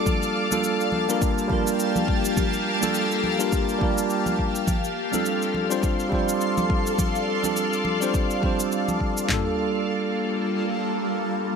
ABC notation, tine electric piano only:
X:1
M:4/4
L:1/16
Q:"Swing 16ths" 1/4=104
K:Gm
V:1 name="Tine electric piano"
[G,B,DFA]3 [G,B,DFA]4 [G,B,DFB]3 [G,B,DFB]6- | [G,B,DFB]3 [G,B,DFA]4 [G,B,DFB]3 [G,B,DFB]6 | z3 [G,CDFA]4 [G,CDFc]3 [G,CDFc]6- | [G,CDFc]3 [G,CDFA]4 [G,CDFc]3 [G,CDFc]6 |
[G,B,DFA]16 |]